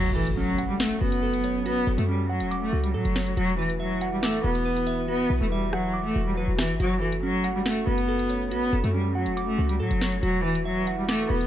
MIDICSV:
0, 0, Header, 1, 7, 480
1, 0, Start_track
1, 0, Key_signature, 3, "minor"
1, 0, Tempo, 428571
1, 1856, Time_signature, 4, 2, 24, 8
1, 12844, End_track
2, 0, Start_track
2, 0, Title_t, "Clean electric guitar"
2, 0, Program_c, 0, 27
2, 0, Note_on_c, 0, 66, 87
2, 176, Note_on_c, 0, 69, 82
2, 418, Note_on_c, 0, 61, 78
2, 654, Note_on_c, 0, 78, 94
2, 1121, Note_off_c, 0, 66, 0
2, 1134, Note_on_c, 0, 66, 78
2, 1360, Note_off_c, 0, 69, 0
2, 1374, Note_on_c, 0, 69, 90
2, 1615, Note_on_c, 0, 73, 77
2, 1617, Note_off_c, 0, 61, 0
2, 1845, Note_off_c, 0, 66, 0
2, 1855, Note_off_c, 0, 78, 0
2, 1858, Note_on_c, 0, 66, 95
2, 2083, Note_off_c, 0, 69, 0
2, 2096, Note_on_c, 0, 69, 75
2, 2336, Note_on_c, 0, 61, 78
2, 2571, Note_on_c, 0, 78, 92
2, 2813, Note_on_c, 0, 86, 86
2, 2815, Note_off_c, 0, 73, 0
2, 3043, Note_off_c, 0, 66, 0
2, 3056, Note_on_c, 0, 66, 74
2, 3282, Note_off_c, 0, 69, 0
2, 3295, Note_on_c, 0, 69, 88
2, 3536, Note_off_c, 0, 61, 0
2, 3536, Note_on_c, 0, 73, 79
2, 3762, Note_off_c, 0, 66, 0
2, 3773, Note_off_c, 0, 78, 0
2, 3774, Note_off_c, 0, 86, 0
2, 3775, Note_on_c, 0, 66, 97
2, 3776, Note_off_c, 0, 69, 0
2, 3776, Note_off_c, 0, 73, 0
2, 4016, Note_on_c, 0, 71, 75
2, 4254, Note_on_c, 0, 76, 76
2, 4497, Note_on_c, 0, 78, 98
2, 4739, Note_on_c, 0, 86, 87
2, 4961, Note_off_c, 0, 66, 0
2, 4974, Note_on_c, 0, 66, 73
2, 5199, Note_off_c, 0, 71, 0
2, 5212, Note_on_c, 0, 71, 92
2, 5439, Note_off_c, 0, 76, 0
2, 5453, Note_on_c, 0, 76, 77
2, 5680, Note_off_c, 0, 66, 0
2, 5693, Note_on_c, 0, 66, 95
2, 5697, Note_off_c, 0, 78, 0
2, 5924, Note_off_c, 0, 71, 0
2, 5937, Note_off_c, 0, 86, 0
2, 5938, Note_on_c, 0, 71, 78
2, 6168, Note_off_c, 0, 76, 0
2, 6182, Note_on_c, 0, 76, 75
2, 6419, Note_on_c, 0, 78, 89
2, 6649, Note_on_c, 0, 86, 83
2, 6882, Note_off_c, 0, 66, 0
2, 6895, Note_on_c, 0, 66, 75
2, 7125, Note_off_c, 0, 71, 0
2, 7139, Note_on_c, 0, 71, 89
2, 7363, Note_off_c, 0, 76, 0
2, 7376, Note_on_c, 0, 76, 74
2, 7600, Note_off_c, 0, 66, 0
2, 7612, Note_off_c, 0, 86, 0
2, 7614, Note_on_c, 0, 66, 86
2, 7616, Note_off_c, 0, 76, 0
2, 7617, Note_off_c, 0, 71, 0
2, 7617, Note_off_c, 0, 78, 0
2, 7856, Note_on_c, 0, 69, 79
2, 8098, Note_on_c, 0, 61, 77
2, 8335, Note_on_c, 0, 78, 101
2, 8801, Note_off_c, 0, 66, 0
2, 8814, Note_on_c, 0, 66, 78
2, 9041, Note_off_c, 0, 69, 0
2, 9054, Note_on_c, 0, 69, 92
2, 9295, Note_on_c, 0, 73, 74
2, 9297, Note_off_c, 0, 61, 0
2, 9524, Note_off_c, 0, 66, 0
2, 9535, Note_off_c, 0, 78, 0
2, 9538, Note_on_c, 0, 66, 95
2, 9762, Note_off_c, 0, 69, 0
2, 9776, Note_on_c, 0, 69, 76
2, 10015, Note_on_c, 0, 61, 77
2, 10250, Note_on_c, 0, 78, 89
2, 10493, Note_on_c, 0, 86, 83
2, 10495, Note_off_c, 0, 73, 0
2, 10723, Note_off_c, 0, 66, 0
2, 10736, Note_on_c, 0, 66, 73
2, 10961, Note_off_c, 0, 69, 0
2, 10975, Note_on_c, 0, 69, 88
2, 11215, Note_on_c, 0, 73, 78
2, 11216, Note_off_c, 0, 61, 0
2, 11441, Note_off_c, 0, 66, 0
2, 11453, Note_off_c, 0, 78, 0
2, 11454, Note_off_c, 0, 86, 0
2, 11455, Note_off_c, 0, 69, 0
2, 11455, Note_off_c, 0, 73, 0
2, 11455, Note_on_c, 0, 66, 95
2, 11695, Note_on_c, 0, 71, 75
2, 11933, Note_on_c, 0, 76, 76
2, 12177, Note_on_c, 0, 78, 99
2, 12418, Note_on_c, 0, 86, 88
2, 12641, Note_off_c, 0, 66, 0
2, 12655, Note_on_c, 0, 66, 72
2, 12844, Note_off_c, 0, 66, 0
2, 12844, Note_off_c, 0, 71, 0
2, 12844, Note_off_c, 0, 76, 0
2, 12844, Note_off_c, 0, 78, 0
2, 12844, Note_off_c, 0, 86, 0
2, 12844, End_track
3, 0, Start_track
3, 0, Title_t, "Ambient pad"
3, 0, Program_c, 1, 92
3, 0, Note_on_c, 1, 54, 79
3, 0, Note_on_c, 1, 57, 77
3, 0, Note_on_c, 1, 61, 89
3, 3737, Note_off_c, 1, 54, 0
3, 3737, Note_off_c, 1, 57, 0
3, 3737, Note_off_c, 1, 61, 0
3, 3776, Note_on_c, 1, 52, 81
3, 3776, Note_on_c, 1, 64, 72
3, 3776, Note_on_c, 1, 71, 92
3, 3777, Note_on_c, 1, 66, 74
3, 7578, Note_off_c, 1, 52, 0
3, 7578, Note_off_c, 1, 64, 0
3, 7578, Note_off_c, 1, 71, 0
3, 7616, Note_on_c, 1, 57, 80
3, 7616, Note_on_c, 1, 61, 74
3, 11417, Note_off_c, 1, 57, 0
3, 11418, Note_off_c, 1, 61, 0
3, 11455, Note_on_c, 1, 52, 81
3, 11455, Note_on_c, 1, 64, 74
3, 11455, Note_on_c, 1, 71, 89
3, 12844, Note_off_c, 1, 52, 0
3, 12844, Note_off_c, 1, 64, 0
3, 12844, Note_off_c, 1, 66, 0
3, 12844, Note_off_c, 1, 71, 0
3, 12844, End_track
4, 0, Start_track
4, 0, Title_t, "Cello"
4, 0, Program_c, 2, 42
4, 0, Note_on_c, 2, 54, 104
4, 150, Note_off_c, 2, 54, 0
4, 177, Note_on_c, 2, 52, 78
4, 391, Note_off_c, 2, 52, 0
4, 416, Note_on_c, 2, 54, 92
4, 755, Note_off_c, 2, 54, 0
4, 776, Note_on_c, 2, 55, 75
4, 883, Note_off_c, 2, 55, 0
4, 896, Note_on_c, 2, 57, 85
4, 1110, Note_off_c, 2, 57, 0
4, 1137, Note_on_c, 2, 59, 82
4, 1813, Note_off_c, 2, 59, 0
4, 1855, Note_on_c, 2, 59, 113
4, 2194, Note_off_c, 2, 59, 0
4, 2216, Note_on_c, 2, 57, 73
4, 2323, Note_off_c, 2, 57, 0
4, 2335, Note_on_c, 2, 55, 79
4, 2550, Note_off_c, 2, 55, 0
4, 2574, Note_on_c, 2, 54, 72
4, 2913, Note_off_c, 2, 54, 0
4, 2938, Note_on_c, 2, 57, 77
4, 3151, Note_off_c, 2, 57, 0
4, 3176, Note_on_c, 2, 55, 69
4, 3283, Note_off_c, 2, 55, 0
4, 3297, Note_on_c, 2, 54, 79
4, 3748, Note_off_c, 2, 54, 0
4, 3776, Note_on_c, 2, 54, 112
4, 3990, Note_off_c, 2, 54, 0
4, 4017, Note_on_c, 2, 52, 82
4, 4231, Note_off_c, 2, 52, 0
4, 4255, Note_on_c, 2, 54, 84
4, 4594, Note_off_c, 2, 54, 0
4, 4617, Note_on_c, 2, 55, 78
4, 4724, Note_off_c, 2, 55, 0
4, 4735, Note_on_c, 2, 57, 102
4, 4950, Note_off_c, 2, 57, 0
4, 4977, Note_on_c, 2, 59, 85
4, 5653, Note_off_c, 2, 59, 0
4, 5695, Note_on_c, 2, 59, 104
4, 6034, Note_off_c, 2, 59, 0
4, 6058, Note_on_c, 2, 57, 75
4, 6164, Note_off_c, 2, 57, 0
4, 6176, Note_on_c, 2, 55, 81
4, 6390, Note_off_c, 2, 55, 0
4, 6415, Note_on_c, 2, 54, 77
4, 6754, Note_off_c, 2, 54, 0
4, 6777, Note_on_c, 2, 57, 82
4, 6991, Note_off_c, 2, 57, 0
4, 7016, Note_on_c, 2, 55, 84
4, 7123, Note_off_c, 2, 55, 0
4, 7135, Note_on_c, 2, 54, 78
4, 7350, Note_off_c, 2, 54, 0
4, 7375, Note_on_c, 2, 52, 77
4, 7590, Note_off_c, 2, 52, 0
4, 7616, Note_on_c, 2, 54, 105
4, 7830, Note_off_c, 2, 54, 0
4, 7856, Note_on_c, 2, 52, 77
4, 8070, Note_off_c, 2, 52, 0
4, 8097, Note_on_c, 2, 54, 91
4, 8435, Note_off_c, 2, 54, 0
4, 8456, Note_on_c, 2, 55, 79
4, 8563, Note_off_c, 2, 55, 0
4, 8575, Note_on_c, 2, 57, 87
4, 8790, Note_off_c, 2, 57, 0
4, 8816, Note_on_c, 2, 59, 82
4, 9493, Note_off_c, 2, 59, 0
4, 9535, Note_on_c, 2, 59, 112
4, 9874, Note_off_c, 2, 59, 0
4, 9896, Note_on_c, 2, 57, 74
4, 10003, Note_off_c, 2, 57, 0
4, 10015, Note_on_c, 2, 55, 77
4, 10230, Note_off_c, 2, 55, 0
4, 10253, Note_on_c, 2, 54, 73
4, 10593, Note_off_c, 2, 54, 0
4, 10617, Note_on_c, 2, 57, 76
4, 10831, Note_off_c, 2, 57, 0
4, 10854, Note_on_c, 2, 55, 69
4, 10962, Note_off_c, 2, 55, 0
4, 10975, Note_on_c, 2, 54, 80
4, 11427, Note_off_c, 2, 54, 0
4, 11455, Note_on_c, 2, 54, 112
4, 11670, Note_off_c, 2, 54, 0
4, 11695, Note_on_c, 2, 52, 84
4, 11910, Note_off_c, 2, 52, 0
4, 11935, Note_on_c, 2, 54, 81
4, 12274, Note_off_c, 2, 54, 0
4, 12297, Note_on_c, 2, 55, 79
4, 12404, Note_off_c, 2, 55, 0
4, 12415, Note_on_c, 2, 57, 105
4, 12630, Note_off_c, 2, 57, 0
4, 12656, Note_on_c, 2, 59, 84
4, 12844, Note_off_c, 2, 59, 0
4, 12844, End_track
5, 0, Start_track
5, 0, Title_t, "808-style bass"
5, 0, Program_c, 3, 38
5, 0, Note_on_c, 3, 30, 102
5, 896, Note_on_c, 3, 28, 97
5, 913, Note_off_c, 3, 30, 0
5, 1124, Note_off_c, 3, 28, 0
5, 1136, Note_on_c, 3, 30, 101
5, 1856, Note_on_c, 3, 33, 98
5, 1873, Note_off_c, 3, 30, 0
5, 1976, Note_on_c, 3, 30, 101
5, 1993, Note_off_c, 3, 33, 0
5, 2090, Note_off_c, 3, 30, 0
5, 2096, Note_on_c, 3, 30, 106
5, 2211, Note_off_c, 3, 30, 0
5, 2216, Note_on_c, 3, 42, 109
5, 2696, Note_on_c, 3, 28, 98
5, 2713, Note_off_c, 3, 42, 0
5, 3038, Note_off_c, 3, 28, 0
5, 3055, Note_on_c, 3, 37, 107
5, 3296, Note_on_c, 3, 45, 100
5, 3313, Note_off_c, 3, 37, 0
5, 3410, Note_off_c, 3, 45, 0
5, 3416, Note_on_c, 3, 30, 100
5, 3761, Note_off_c, 3, 30, 0
5, 3776, Note_on_c, 3, 28, 108
5, 4931, Note_off_c, 3, 28, 0
5, 4976, Note_on_c, 3, 28, 101
5, 5897, Note_off_c, 3, 28, 0
5, 5936, Note_on_c, 3, 35, 108
5, 6051, Note_off_c, 3, 35, 0
5, 6056, Note_on_c, 3, 28, 107
5, 6862, Note_off_c, 3, 28, 0
5, 6896, Note_on_c, 3, 28, 100
5, 7241, Note_off_c, 3, 28, 0
5, 7256, Note_on_c, 3, 28, 103
5, 7496, Note_on_c, 3, 31, 96
5, 7512, Note_off_c, 3, 28, 0
5, 7610, Note_off_c, 3, 31, 0
5, 7615, Note_on_c, 3, 30, 103
5, 8575, Note_on_c, 3, 28, 100
5, 8592, Note_off_c, 3, 30, 0
5, 8804, Note_off_c, 3, 28, 0
5, 8815, Note_on_c, 3, 30, 101
5, 9535, Note_on_c, 3, 33, 97
5, 9552, Note_off_c, 3, 30, 0
5, 9655, Note_on_c, 3, 30, 98
5, 9672, Note_off_c, 3, 33, 0
5, 9769, Note_off_c, 3, 30, 0
5, 9775, Note_on_c, 3, 30, 105
5, 9891, Note_off_c, 3, 30, 0
5, 9895, Note_on_c, 3, 42, 108
5, 10375, Note_on_c, 3, 28, 100
5, 10392, Note_off_c, 3, 42, 0
5, 10717, Note_off_c, 3, 28, 0
5, 10735, Note_on_c, 3, 37, 105
5, 10975, Note_on_c, 3, 45, 103
5, 10992, Note_off_c, 3, 37, 0
5, 11090, Note_off_c, 3, 45, 0
5, 11095, Note_on_c, 3, 30, 100
5, 11441, Note_off_c, 3, 30, 0
5, 11455, Note_on_c, 3, 28, 110
5, 12611, Note_off_c, 3, 28, 0
5, 12656, Note_on_c, 3, 28, 99
5, 12844, Note_off_c, 3, 28, 0
5, 12844, End_track
6, 0, Start_track
6, 0, Title_t, "Impact"
6, 0, Program_c, 4, 103
6, 0, Note_on_c, 4, 60, 82
6, 1856, Note_off_c, 4, 60, 0
6, 12844, End_track
7, 0, Start_track
7, 0, Title_t, "Drums"
7, 299, Note_on_c, 9, 42, 81
7, 411, Note_off_c, 9, 42, 0
7, 654, Note_on_c, 9, 42, 78
7, 766, Note_off_c, 9, 42, 0
7, 896, Note_on_c, 9, 38, 121
7, 896, Note_on_c, 9, 42, 81
7, 1008, Note_off_c, 9, 38, 0
7, 1008, Note_off_c, 9, 42, 0
7, 1257, Note_on_c, 9, 42, 74
7, 1369, Note_off_c, 9, 42, 0
7, 1497, Note_on_c, 9, 42, 74
7, 1609, Note_off_c, 9, 42, 0
7, 1610, Note_on_c, 9, 42, 84
7, 1722, Note_off_c, 9, 42, 0
7, 1857, Note_on_c, 9, 42, 73
7, 1969, Note_off_c, 9, 42, 0
7, 2219, Note_on_c, 9, 42, 78
7, 2331, Note_off_c, 9, 42, 0
7, 2692, Note_on_c, 9, 42, 69
7, 2804, Note_off_c, 9, 42, 0
7, 2816, Note_on_c, 9, 42, 79
7, 2928, Note_off_c, 9, 42, 0
7, 3177, Note_on_c, 9, 42, 73
7, 3289, Note_off_c, 9, 42, 0
7, 3417, Note_on_c, 9, 42, 78
7, 3529, Note_off_c, 9, 42, 0
7, 3537, Note_on_c, 9, 38, 118
7, 3649, Note_off_c, 9, 38, 0
7, 3657, Note_on_c, 9, 42, 69
7, 3769, Note_off_c, 9, 42, 0
7, 3777, Note_on_c, 9, 42, 74
7, 3889, Note_off_c, 9, 42, 0
7, 4140, Note_on_c, 9, 42, 78
7, 4252, Note_off_c, 9, 42, 0
7, 4495, Note_on_c, 9, 42, 75
7, 4607, Note_off_c, 9, 42, 0
7, 4736, Note_on_c, 9, 38, 115
7, 4736, Note_on_c, 9, 42, 81
7, 4848, Note_off_c, 9, 38, 0
7, 4848, Note_off_c, 9, 42, 0
7, 5097, Note_on_c, 9, 42, 73
7, 5209, Note_off_c, 9, 42, 0
7, 5337, Note_on_c, 9, 42, 74
7, 5449, Note_off_c, 9, 42, 0
7, 5451, Note_on_c, 9, 42, 87
7, 5563, Note_off_c, 9, 42, 0
7, 6416, Note_on_c, 9, 37, 94
7, 6528, Note_off_c, 9, 37, 0
7, 7376, Note_on_c, 9, 37, 95
7, 7376, Note_on_c, 9, 38, 114
7, 7488, Note_off_c, 9, 37, 0
7, 7488, Note_off_c, 9, 38, 0
7, 7617, Note_on_c, 9, 42, 75
7, 7729, Note_off_c, 9, 42, 0
7, 7979, Note_on_c, 9, 42, 80
7, 8091, Note_off_c, 9, 42, 0
7, 8334, Note_on_c, 9, 42, 77
7, 8446, Note_off_c, 9, 42, 0
7, 8576, Note_on_c, 9, 38, 120
7, 8576, Note_on_c, 9, 42, 80
7, 8688, Note_off_c, 9, 38, 0
7, 8688, Note_off_c, 9, 42, 0
7, 8937, Note_on_c, 9, 42, 73
7, 9049, Note_off_c, 9, 42, 0
7, 9177, Note_on_c, 9, 42, 72
7, 9289, Note_off_c, 9, 42, 0
7, 9291, Note_on_c, 9, 42, 86
7, 9403, Note_off_c, 9, 42, 0
7, 9537, Note_on_c, 9, 42, 76
7, 9649, Note_off_c, 9, 42, 0
7, 9899, Note_on_c, 9, 42, 80
7, 10011, Note_off_c, 9, 42, 0
7, 10372, Note_on_c, 9, 42, 71
7, 10484, Note_off_c, 9, 42, 0
7, 10496, Note_on_c, 9, 42, 83
7, 10608, Note_off_c, 9, 42, 0
7, 10857, Note_on_c, 9, 42, 74
7, 10969, Note_off_c, 9, 42, 0
7, 11097, Note_on_c, 9, 42, 77
7, 11209, Note_off_c, 9, 42, 0
7, 11217, Note_on_c, 9, 38, 114
7, 11329, Note_off_c, 9, 38, 0
7, 11337, Note_on_c, 9, 42, 71
7, 11449, Note_off_c, 9, 42, 0
7, 11457, Note_on_c, 9, 42, 76
7, 11569, Note_off_c, 9, 42, 0
7, 11819, Note_on_c, 9, 42, 78
7, 11931, Note_off_c, 9, 42, 0
7, 12174, Note_on_c, 9, 42, 77
7, 12286, Note_off_c, 9, 42, 0
7, 12416, Note_on_c, 9, 38, 115
7, 12417, Note_on_c, 9, 42, 82
7, 12528, Note_off_c, 9, 38, 0
7, 12529, Note_off_c, 9, 42, 0
7, 12777, Note_on_c, 9, 42, 74
7, 12844, Note_off_c, 9, 42, 0
7, 12844, End_track
0, 0, End_of_file